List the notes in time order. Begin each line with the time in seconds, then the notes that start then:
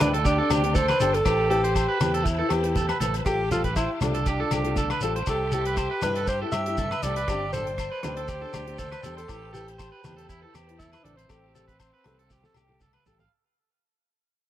Already playing: B4 D5 G5 C6
0.00 D2 G3 C4 D4 G4, cross-stick, closed hi-hat, high conga, low agogo, shekere
0.14 A4, closed hi-hat
0.24 D4 G4, kick, closed hi-hat, muted conga, shekere
0.38 C4 D4 G4 A4
0.50 D2 G3 C4 D4 G4, cross-stick, closed hi-hat, high conga, low agogo, shekere
0.63 C4 D4 G4, closed hi-hat
0.75 A4 C5, kick, closed hi-hat, muted conga, high conga, shekere
0.88 B4, cross-stick, low agogo
1.00 G1 D4 G4 A4, muted nylon-string guitar stroke, closed hi-hat, shekere
1.13 A4, muted clean electric guitar stroke, closed hi-hat, shekere
1.25 A1 C4 E4 G4 B4 C5 A5 B5, kick, cross-stick, closed hi-hat, low agogo, shekere
1.50 C4 E4 G4 A4 B4, closed hi-hat, muted conga
1.64 C5, closed hi-hat
1.75 C5, kick, cross-stick, closed hi-hat, low agogo, shekere
1.88 B4
2.00 E2 C4 E4 G4 B4, cross-stick, closed hi-hat, high conga, low agogo, shekere
2.14 A4, closed hi-hat
2.24 E4, muted clean electric guitar stroke, kick, closed hi-hat, muted conga, shekere
2.39 E4 A4 B4
2.49 E2 C4 E4 G4 B4, cross-stick, closed hi-hat, low agogo
2.63 E4 B4, closed hi-hat
2.75 A4, kick, closed hi-hat, muted conga, high conga, shekere
2.89 B4, cross-stick, low agogo
3.00 A1 C4 E4 A4 B4, closed hi-hat, high conga, shekere
3.14 closed hi-hat, shekere
3.26 A1 G3 C4 F4 G4 A4 F5 G5, kick, cross-stick, closed hi-hat, low agogo, shekere
3.50 G3 C4 F4 A4, closed hi-hat, muted conga, low conga, shekere
3.64 B4, kick, closed hi-hat, shekere
3.76 E4 C5, kick, cross-stick, closed hi-hat, low agogo, shekere
4.01 C2 G3 C4 D4 F4 A4, cross-stick, closed hi-hat, high conga, low agogo, shekere
4.14 A4, closed hi-hat, shekere
4.26 D4 G4, kick, closed hi-hat, muted conga, shekere
4.40 F4 A4, muted nylon-string guitar stroke
4.51 C2 G3 C4 F4 G4 A4, cross-stick, closed hi-hat, high conga, low agogo, shekere
4.65 C4 F4 A4, closed hi-hat
4.76 A4, kick, closed hi-hat, muted conga, high conga, shekere
4.90 B4, cross-stick, low agogo
5.01 A1 G3 C4 F4 A4, closed hi-hat, shekere
5.16 C5, closed hi-hat
5.26 C2 G3 C4 E4 G4 A4 E5 C6, kick, cross-stick, closed hi-hat, low agogo, shekere
5.52 G3 C4 E4 G4 A4, closed hi-hat, shekere
5.65 B4, closed hi-hat
5.77 C5, kick, cross-stick, closed hi-hat, low agogo, shekere
5.91 B4
6.02 G2 G3 C4 E4 G4 B4, cross-stick, closed hi-hat, high conga, low agogo, shekere
6.16 A4, closed hi-hat
6.27 G4 C5, kick, closed hi-hat, muted conga, shekere
6.42 C4 E4 G4 A4
6.52 G2 G3 C4 E4 G4 E5, cross-stick, closed hi-hat, low agogo, shekere
6.66 C4 E4 G4, closed hi-hat
6.77 A4, kick, closed hi-hat, muted conga, high conga, shekere
6.91 B4, cross-stick, low agogo
7.03 C2 G3 C4 E4 G4 A4 D5, closed hi-hat, high conga, shekere
7.16 B4, closed hi-hat, shekere
7.28 G1 G3 C4 D4 G4 D5, kick, cross-stick, closed hi-hat, muted conga, low agogo, shekere
7.53 G3 C4 D4 A4 C5, closed hi-hat, muted conga, low conga, shekere
7.57 G4
7.67 closed hi-hat
7.78 C5, kick, cross-stick, closed hi-hat, low agogo, shekere
7.91 B4
8.03 D2 G3 C4 D4 C5, cross-stick, closed hi-hat, high conga, low agogo, shekere
8.07 G4
8.17 A4, closed hi-hat
8.28 G4, kick, closed hi-hat, muted conga, shekere
8.42 C4 D4 G4 A4
8.53 D2 G3 C4 D4 G4, cross-stick, closed hi-hat, high conga, low agogo, shekere
8.67 C4 D4 G4, closed hi-hat
8.78 A4 C5, kick, closed hi-hat, muted conga, high conga, shekere
8.92 B4, cross-stick, low agogo
9.03 E2 G3 C4 D4 G4 A4, closed hi-hat, shekere
9.17 A4 C5, closed hi-hat, shekere
9.28 A1 C4 E4 G4 B4 C5 A5 B5, kick, cross-stick, closed hi-hat, low agogo, shekere
9.53 C4 E4 G4 A4 B4, closed hi-hat, muted conga, shekere
9.68 closed hi-hat
9.78 C5, kick, cross-stick, closed hi-hat, low agogo, shekere
9.92 B4
10.03 E2 C4 E4 G4 B4, cross-stick, closed hi-hat, high conga, low agogo, shekere
10.17 A4, closed hi-hat
10.29 E4, kick, closed hi-hat, muted conga, shekere
10.42 E4 A4 B4
10.54 E2 C4 E4 G4 B4, cross-stick, closed hi-hat, low agogo, shekere
10.67 E4 B4, closed hi-hat
10.79 E4 A4, kick, closed hi-hat, muted conga, high conga, shekere
10.92 B4, cross-stick, low agogo
11.03 A1 C4 D4 E4 A4 B4, closed hi-hat, high conga
11.17 C4 C5, closed hi-hat, shekere
11.29 A1 G3 C4 G4 A4 F5 G5 A5, kick, cross-stick, closed hi-hat, low agogo, shekere
11.54 G3 C4 G4 A4, closed hi-hat, shekere
11.68 B4, kick, closed hi-hat, shekere
11.80 C5, kick, cross-stick, closed hi-hat, low agogo, shekere
11.94 B4
12.04 C2 G3 C4 G4 A4, cross-stick, closed hi-hat, high conga, low agogo
12.19 A4, closed hi-hat
12.30 G4, kick, snare, muted conga, low conga, shekere
12.43 G4 A4, snare
12.54 C2 G3 C4 G4 A4, high conga, low agogo, shekere
12.69 C4 G4 A4, high tom
12.80 A4, kick, mid tom, muted conga, high conga, shekere
12.93 B4, low agogo
13.05 A1 G3 G4 A4, floor tom, shekere
13.19 F5, floor tom, shekere